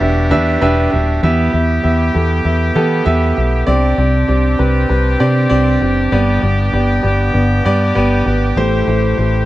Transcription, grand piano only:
0.00 1.23 E3 medium
0.00 0.31 D4 loud
0.00 0.31 G4 loud
0.00 0.31 B4 loud
0.00 0.31 E5 loud
0.31 0.55 D4 loud
0.31 0.56 G4 loud
0.31 0.56 B4 loud
0.31 0.56 E5 loud
0.61 0.86 D4 loud
0.61 0.86 G4 loud
0.61 0.86 B4 loud
0.61 0.86 E5 loud
0.91 1.16 D4 medium
0.91 1.16 G4 medium
0.91 1.16 B4 medium
0.91 1.17 E5 medium
1.23 2.11 E3 medium
1.23 1.47 B3 loud
1.23 1.48 G4 medium
1.23 1.48 E5 loud
1.53 1.78 B3 medium
1.53 1.78 G4 medium
1.53 1.78 E5 medium
1.83 2.08 B3 medium
1.83 2.08 G4 medium
1.83 2.08 E5 loud
2.14 2.39 B3 medium
2.14 2.39 G4 medium
2.14 2.39 A4 medium
2.45 2.70 B3 medium
2.45 2.70 G4 medium
2.45 2.70 E5 medium
2.75 3.00 B3 loud
2.75 3.00 G4 loud
2.75 3.00 A4 loud
3.05 3.30 B3 loud
3.05 3.31 G4 loud
3.05 3.31 E5 loud
3.36 3.62 B3 medium
3.36 3.62 G4 medium
3.36 3.61 E5 medium
3.67 4.55 C3 medium
3.67 3.92 C4 loud
3.67 3.92 G4 loud
3.67 3.92 D5 loud
3.98 4.23 C4 medium
3.98 4.23 G4 medium
3.98 4.23 D5 medium
4.28 4.53 C4 medium
4.28 4.53 G4 medium
4.28 4.53 D5 medium
4.59 4.84 C4 medium
4.59 4.84 G4 medium
4.59 4.84 B4 medium
4.89 5.14 C4 medium
4.89 5.14 G4 medium
4.89 5.14 B4 medium
5.20 5.45 C4 loud
5.20 5.45 G4 loud
5.20 5.45 D5 loud
5.50 5.75 C4 loud
5.50 5.75 G4 loud
5.50 5.75 D5 loud
5.81 6.07 C4 medium
5.81 6.07 G4 medium
5.81 6.06 D5 medium
6.12 7.00 G2 medium
6.12 6.37 B3 loud
6.12 6.37 G4 loud
6.12 6.37 D5 loud
6.42 6.67 B3 medium
6.42 6.67 G4 medium
6.42 6.67 D5 medium
6.73 6.98 B3 medium
6.73 6.98 G4 medium
6.73 6.98 D5 loud
7.03 7.28 B3 medium
7.03 7.28 G4 medium
7.03 7.29 D5 medium
7.34 7.59 B3 medium
7.34 7.59 G4 medium
7.34 7.60 D5 medium
7.65 7.90 B3 loud
7.65 7.90 G4 medium
7.65 7.90 D5 loud
7.95 8.21 B3 loud
7.95 8.21 G4 loud
7.95 8.21 D5 loud
8.26 8.51 B3 medium
8.26 8.51 G4 medium
8.26 8.51 B4 medium
8.57 9.45 A2 medium
8.57 8.82 A3 loud
8.57 8.82 G4 medium
8.57 8.82 C5 loud
8.88 9.13 A3 medium
8.88 9.13 G4 medium
8.88 9.13 C5 loud
9.18 9.43 A3 medium
9.18 9.43 G4 medium
9.18 9.43 C5 medium

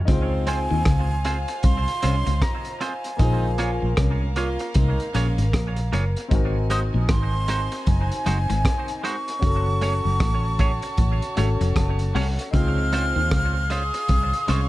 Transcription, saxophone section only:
0.08 1.21 F3 loud
0.08 1.21 G#3 loud
0.08 1.21 C4 loud
2.03 2.34 F3 medium
2.03 2.34 G#3 medium
2.03 2.34 C#4 medium
3.19 3.51 G#3 loud
3.19 3.50 C4 loud
3.19 3.50 D#4 loud
3.58 3.89 A#3 medium
3.58 3.89 C#4 medium
3.58 3.89 F4 medium
3.97 4.28 G#3 medium
3.97 4.28 A#3 medium
3.97 4.28 C#4 medium
4.36 4.67 A#3 medium
4.36 4.67 C#4 loud
4.36 4.67 F4 loud
4.75 5.06 G#3 medium
4.75 5.06 C4 medium
4.75 5.06 D#4 medium
5.14 5.45 G#3 loud
5.14 5.45 A#3 medium
5.14 5.45 C#4 loud
12.53 13.66 F3 loud
12.53 13.66 G#3 loud
12.53 13.66 C4 loud
14.47 14.69 F3 medium
14.47 14.69 G#3 medium
14.47 14.69 C#4 medium

